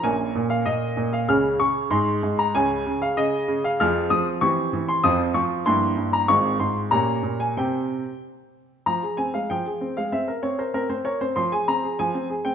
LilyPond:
<<
  \new Staff \with { instrumentName = "Grand piano" } { \time 2/4 \key des \major \tempo 4 = 96 << { aes''8. f''16 ees''8. f''16 | f'''8 des'''8 c'''8. bes''16 | aes''8. f''16 ees''8. f''16 | \key f \minor f'''8 ees'''8 des'''8. c'''16 |
ees'''8 des'''8 c'''8. bes''16 | des'''8 c'''8 bes''8. aes''16 | g''4 r4 | bes''8 aes''16 f''16 g''8. f''16 |
e''8 des''16 c''16 bes'16 c''16 des''16 c''16 | c'''16 aes''16 bes''8 aes''8. g''16 | } \\ { <des' bes'>2 | <des' aes'>4 <ees' aes'>4 | <des' aes'>2 | <c' aes'>4 <c' g'>4 |
<c' f'>4 <bes e'>4 | <c' f'>4 <des' g'>4 | r2 | r2 |
r2 | r2 | } >> }
  \new Staff \with { instrumentName = "Grand piano" } { \clef bass \time 2/4 \key des \major <bes,, bes,>8 bes,8 bes,8 bes,8 | <des, des>8 des8 aes,8 aes,8 | <des, des>8 des8 des8 des8 | \key f \minor <f, f>8 f8 e8 e8 |
<f, f>8 f8 g,8 g,8 | <aes,, aes,>8 aes,8 bes,8 bes,8 | <c c' g'>4 r4 | f16 aes'16 c'16 aes16 f16 aes'16 c'16 aes16 |
c'16 bes'16 c'16 bes'16 c'16 c'16 bes'16 c'16 | f16 aes'16 c'16 aes'16 f16 c'16 aes'16 c'16 | }
>>